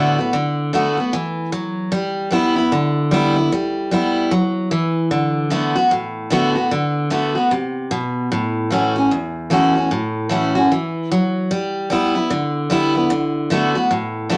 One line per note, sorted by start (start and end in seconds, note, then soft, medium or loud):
0.00 0.31 A2 medium
0.00 0.17 D3 loud
0.00 0.18 A3 loud
0.00 0.18 B3 loud
0.00 0.17 F#4 loud
0.19 0.34 B3 soft
0.19 0.33 F#4 medium
0.33 0.72 D3 medium
0.73 0.97 D3 medium
0.73 0.98 A3 medium
0.73 0.98 B3 medium
0.73 0.96 F#4 loud
0.97 1.13 B3 soft
0.97 1.12 F#4 medium
1.13 1.52 E3 medium
1.52 1.91 F#3 medium
1.92 2.29 G3 medium
2.31 2.56 G3 medium
2.31 2.56 B3 loud
2.31 2.55 E4 loud
2.56 2.72 B3 soft
2.56 2.71 E4 medium
2.72 3.49 D3 medium
3.11 3.36 G3 medium
3.11 3.36 B3 loud
3.11 3.35 E4 loud
3.36 3.52 B3 medium
3.36 3.51 E4 medium
3.52 3.90 G3 medium
3.91 4.30 G3 medium
3.91 4.31 B3 medium
3.91 4.31 E4 medium
4.31 4.70 F#3 medium
4.71 5.10 E3 loud
5.11 5.49 D3 loud
5.50 5.75 D3 medium
5.50 5.75 A3 loud
5.50 5.76 B3 medium
5.50 5.74 F#4 medium
5.75 5.92 B3 soft
5.75 5.90 F#4 medium
5.91 6.68 A2 medium
6.30 6.55 D3 loud
6.30 6.55 A3 loud
6.30 6.56 B3 loud
6.30 6.54 F#4 loud
6.55 6.71 B3 medium
6.55 6.70 F#4 medium
6.71 7.09 D3 medium
7.10 7.35 D3 medium
7.10 7.35 A3 medium
7.10 7.35 B3 medium
7.10 7.34 F#4 medium
7.35 7.51 B3 medium
7.35 7.50 F#4 medium
7.51 7.90 C3 medium
7.91 8.29 B2 loud
8.32 9.08 A2 loud
8.70 8.95 E3 medium
8.70 8.95 A3 medium
8.70 8.96 C#4 medium
8.70 8.94 F#4 medium
8.96 9.11 C#4 soft
8.96 9.10 F#4 medium
9.11 9.88 E2 medium
9.50 9.74 E3 medium
9.50 9.75 A3 loud
9.50 9.75 C#4 loud
9.50 9.74 F#4 loud
9.75 9.91 C#4 soft
9.75 9.90 F#4 medium
9.91 10.68 A2 medium
10.29 10.54 E3 medium
10.29 10.55 A3 medium
10.29 10.55 C#4 medium
10.29 10.54 F#4 loud
10.55 10.71 C#4 medium
10.55 10.70 F#4 medium
10.72 11.10 E3 loud
11.11 11.50 F#3 loud
11.51 11.89 G3 loud
11.90 12.14 G3 medium
11.90 12.15 B3 medium
11.90 12.14 E4 loud
12.15 12.31 B3 medium
12.15 12.30 E4 medium
12.30 13.08 D3 medium
12.70 12.94 G3 loud
12.70 12.95 B3 loud
12.70 12.94 E4 loud
12.95 13.11 B3 medium
12.95 13.10 E4 medium
13.10 13.49 D3 medium
13.50 13.75 D3 medium
13.50 13.75 A3 medium
13.50 13.75 B3 loud
13.50 13.74 F#4 loud
13.75 13.91 B3 medium
13.75 13.90 F#4 medium
13.91 14.37 A2 medium
14.29 14.37 D3 loud
14.29 14.37 A3 loud
14.29 14.37 B3 loud
14.29 14.37 F#4 medium